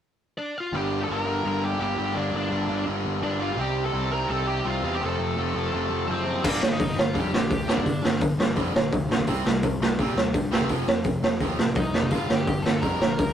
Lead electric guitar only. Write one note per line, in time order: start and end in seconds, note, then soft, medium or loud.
0.38 0.54 D4 soft
0.38 0.58 D5 medium
0.58 0.74 F4 medium
0.58 0.76 F5 medium
0.76 0.99 G4 medium
0.76 1.01 G5 medium
1.04 1.07 A4 medium
1.04 1.07 A5 medium
1.12 1.44 A#4 medium
1.12 1.46 A#5 medium
1.48 1.63 A#4 medium
1.48 1.64 A#5 medium
1.64 1.80 G4 medium
1.64 1.80 G5 medium
1.81 2.13 G4 medium
1.81 2.18 G5 medium
2.16 2.33 D4 medium
2.16 2.34 D5 medium
2.36 2.85 D4 soft
2.36 2.85 D5 medium
3.23 3.39 D4 medium
3.23 3.42 D5 medium
3.42 3.57 F4 medium
3.42 3.60 F5 medium
3.60 3.84 G4 medium
3.60 3.85 G5 medium
3.85 4.10 A4 medium
3.85 4.10 A5 loud
4.12 4.28 A#4 medium
4.12 4.31 A#5 loud
4.28 4.45 A4 medium
4.28 4.46 A5 medium
4.47 4.64 G4 medium
4.47 4.67 G5 medium
4.67 4.91 F4 medium
4.67 4.95 F5 medium
4.95 5.02 G4 medium
4.95 5.03 G5 medium
5.05 6.06 A4 medium
5.05 6.08 A5 loud
6.11 6.43 C4 soft
6.11 6.46 C5 medium
6.47 6.70 D4 medium
6.47 6.72 D5 medium
6.72 6.96 D#4 medium
6.72 6.99 D#5 medium
6.99 7.14 F4 medium
6.99 7.16 F5 medium
7.20 7.67 G4 medium
7.20 7.72 G5 medium
7.71 8.20 D4 medium
7.71 8.19 D5 medium
11.76 12.11 D#4 medium
11.76 12.13 D#5 medium
12.11 12.38 F4 medium
12.11 12.35 F5 medium
12.35 12.65 G5 medium
12.40 12.64 G4 medium
12.63 12.82 A4 medium
12.63 12.81 A5 loud
12.81 13.33 A#4 medium
12.81 13.33 A#5 medium